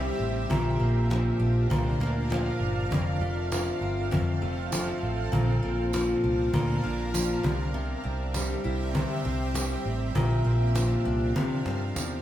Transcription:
Already playing: C3 G3 C4 E4 G4 E5
0.20 A1
0.50 A#1 A#2 D4 A#4 F5, cajon bass
0.80 A#1 A#3
1.10 F3, cajon slap
1.40 A#1 D4
1.70 C2 A#2, cajon bass
1.99 D2 A#3, cajon slap
2.30 F3, cajon slap
2.61 G1
2.90 F1 F2 C4 A4, cajon bass
3.21 F1 A3
3.52 F3, cajon slap, tambourine
3.81 G1 C4
4.11 F2, cajon bass
4.42 F1 A3
4.72 F3, cajon slap, tambourine
5.03 A1
5.32 A#1 A#2 D4 A#4 F5, cajon bass
5.63 A#1 A#3
5.93 F3, cajon slap, tambourine
6.24 C2 D4
6.54 D2 A#2, cajon bass
6.84 A#1 A#3
7.14 F3, cajon slap, tambourine
7.43 C2 C3 C4 G4 E5, cajon bass
7.74 C3
8.04 C2 C4
8.34 G3, cajon slap, tambourine
8.64 C2 E4
8.94 C3, cajon bass
9.25 C2 C4
9.54 G3, cajon slap, tambourine
9.86 A1
10.14 A#1 A#2 D4 A#4 F5, cajon bass
10.45 A#1 A#3
10.75 F3, cajon slap, tambourine
11.05 C2 D4
11.36 C3 C4 G4, cajon bass
11.66 G2 C4, cajon slap
11.96 E2, cajon slap, tambourine

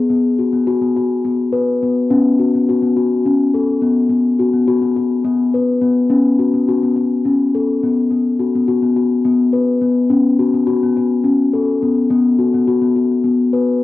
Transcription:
0.10 B3
0.39 F#4
0.53 B3
0.67 F#4
0.82 B3
0.97 F#4
1.25 B3
1.52 B4
1.83 B3
2.10 B3 C#4
2.39 F#4
2.55 B3
2.69 F#4
2.82 B3
2.97 F#4
3.25 C#4
3.54 A4
3.82 B3
4.09 B3
4.39 F#4
4.53 B3
4.68 F#4
4.82 B3
4.96 F#4
5.25 B3
5.54 B4
5.82 B3
6.10 B3 C#4
6.39 F#4
6.54 B3
6.68 F#4
6.83 B3
6.96 F#4
7.25 C#4
7.55 A4
7.83 B3
8.11 B3
8.39 F#4
8.55 B3
8.68 F#4
8.82 B3
8.96 F#4
9.25 B3
9.53 B4
9.81 B3
10.10 B3 C#4
10.39 F#4
10.54 B3
10.67 F#4
10.83 B3
10.97 F#4
11.24 C#4
11.53 A4
11.82 B3
12.10 B3
12.39 F#4
12.54 B3
12.68 F#4
12.81 B3
12.96 F#4
13.24 B3
13.53 B4

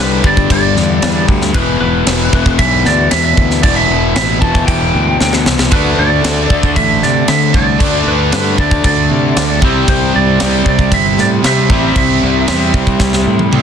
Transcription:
Already playing: C2 G2 D3 G3
0.00 B4
0.23 G1 G2 D3 G3 D5, kick
0.37 kick
0.50 G1 D5, kick, crash
0.76 E2, snare
1.02 E2, snare, crash
1.28 D2, kick
1.42 snare
1.53 E1 E2 B2 E3 B4, kick, crash
1.81 E1 B4
2.07 E1, snare, crash
2.32 E1 E2 B2 E3, kick
2.46 kick
2.59 B1 E5, kick, crash
2.85 D2 D5, snare
3.11 E2 E5, snare, crash
3.24 E5
3.37 D2, kick
3.51 snare
3.63 E1 E2 B2 E3 D5, kick, crash
3.76 E5
3.90 E1
4.16 A1 E5, snare, crash
4.41 E1 E2 B2 E3 A5, kick
4.55 kick
4.67 E1 G5, kick, crash
4.95 D2
5.21 D2, snare
5.33 snare
5.46 C2, snare
5.59 snare
5.71 D2 D3 A3 D4 B4, kick, crash
5.98 D2 D5
6.24 D2, snare, crash
6.50 D2 D3 A3 D4, kick
6.63 kick
6.76 A1 E5, kick, crash
7.03 C3 D5, snare
7.28 D3 E5, snare, crash
7.53 C2 D3 A3 D4 D5, kick
7.79 D2 D3 A3 D4, kick, crash
8.07 D2 B4
8.32 G2 B4, snare, crash
8.58 D2 D3 A3 D4 D5, kick
8.71 kick
8.84 D2 D5, kick, crash
9.11 C3
9.36 D2, snare, crash
9.61 C2 C3 G3 C4, kick
9.88 C2 C5, kick, crash
10.16 C2 D5
10.39 C2 C3 G3 C4, snare, crash
10.66 C2 D5, kick
10.79 kick
10.92 G1 E5, kick, crash
11.18 A2 D5, snare
11.42 C3 G3 C4, snare, crash
11.46 E5
11.69 A1 C3 G3 C4, kick
11.96 C2 E5, kick, crash
12.23 C2
12.47 E2 C3 G3 C4, snare, crash
12.74 C2, kick
12.87 kick
13.00 C2, kick, snare
13.13 snare
13.27 A2
13.39 high tom
13.51 A2 C3 G3 C4, mid tom

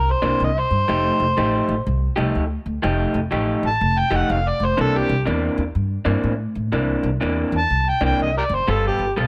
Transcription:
Already playing: C2 A#4
0.11 C5
0.22 C2 C3 E3 A#3 D4
0.40 C2 D#5
0.59 C5
0.71 G2
0.88 F1 F3 A3 D#4 G4
1.20 F1
1.37 A1 F3 A3 D#4 G4
1.68 A1
1.86 C2
2.16 C2 F3 A3 D#4 G4
2.35 D2
2.66 D2
2.82 F1 F3 A3 D#4 G4
3.14 F1
3.31 A1 F3 A3 D#4 G4
3.63 A1 A5
3.81 F1
3.99 G5
4.11 F1 F3 A3 D#4 G4
4.16 F#5
4.30 F1 F5
4.48 D5
4.60 F1
4.65 C5
4.77 C2 C3 E3 A#3 D4 A4
4.98 G4
5.09 C2
5.25 E2 C3 E3 A#3 D4
5.58 E2
5.75 G2
6.05 G2 C3 E3 A#3 D4
6.24 A2
6.55 A2
6.72 C2 C3 E3 A#3 D4
7.03 C2
7.21 E2 C3 E3 A#3 D4
7.52 E2
7.58 A5
7.70 C2
7.89 G5
8.01 C2 C3 E3 A#3 D4 G5
8.19 C2 D#5
8.38 G4 A#4 D5
8.49 F#1
8.54 C5
8.68 G1 G3 B3 F4 A4
8.87 G4
8.98 G1
9.16 B1 G3 B3 F4 A4

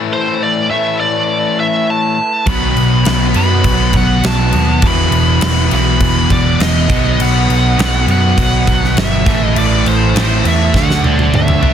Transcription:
Already playing: A2 E3 A3 E4 B4
0.13 C5
0.43 D5
0.70 A2 E3 A3 E5
1.00 D5
1.60 E5
1.90 A5
2.47 B1 B2 F#3 B3 F#4 B5, kick, crash
2.76 B1, crash
3.05 B1, snare, crash
3.34 F#2 B2 F#3 B3 B5, crash
3.64 B1, kick, crash
3.93 B1 F#5, kick, crash
4.24 B1 A5, snare, crash
4.53 D#2, crash
4.82 E1 E2 B2 E3 E4 F#5, kick, crash
4.87 B5
5.12 E1, crash
5.41 E1, snare, crash
5.71 B1 E2 B2 E3 B5, crash
6.00 E1, kick, crash
6.30 E1 D5, kick, crash
6.60 E1 D#5, snare, crash
6.89 B1 B2 F#3 B3 F#4, kick, crash
7.13 D#5
7.19 B1 F#5, crash
7.49 B1, crash
7.76 B1 B2 F#3 B3, crash
7.80 snare
8.07 F#2 F#5, crash
8.38 B1, kick, crash
8.67 B1, kick, crash
8.84 snare
8.97 G1 E5, snare, crash
9.25 A1 A2 E3 A3 E4, kick, snare, crash
9.42 D#5
9.56 A1 D5, crash
9.86 A1 C5, crash
10.15 A1 A2 E3 A3 C5, snare, crash
10.45 E2 E5, crash
10.74 D2 D3 A3 D4 A4 E5 F#5, kick, snare
10.90 snare
11.04 D2 D5, high tom
11.19 high tom
11.32 D2 E5, mid tom
11.48 mid tom
11.62 C2 D3 A3 D4, floor tom

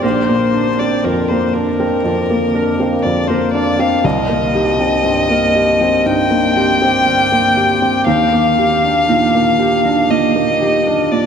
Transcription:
Already playing: C4
0.03 A#1 A#4 C5
0.28 A#3 A#5
0.54 D4 D5
0.79 C4 D5
1.04 F2 A#4
1.28 A#3 C5 A#5
1.53 D4 A#4
1.80 C4 A#4
2.04 F2 D5
2.30 A#3 D5
2.54 D4 A#4
2.80 C4 F5
3.03 F2 D5 A#5
3.28 A#3 A#4 C5
3.54 D4 D5 F5
3.79 C4 F5
4.04 C2 C4 D#5
4.29 A#3 A#4
4.55 D#4 G4
4.79 C4 D#4
5.04 G2 C4
5.30 A#3 A#4
5.55 G4
5.81 C4
6.06 G2 D#4 G5
6.31 A#3 D#4
6.56 C4 G4
6.82 C4 G4
7.06 G2 A#4
7.32 A#3 C4
7.56 G4
7.82 C4 G4
8.06 D#2 D#4 F5
8.32 A#3 D6
8.58 G4
8.83 D4 G4
9.09 A#2 D#4
9.35 A#3
9.59 G4
9.84 D4 D#4
10.10 A#2 G4 D#5
10.36 A#3 G4
10.61 D#4 G4
10.86 D4 A#4
11.11 A#2 D5

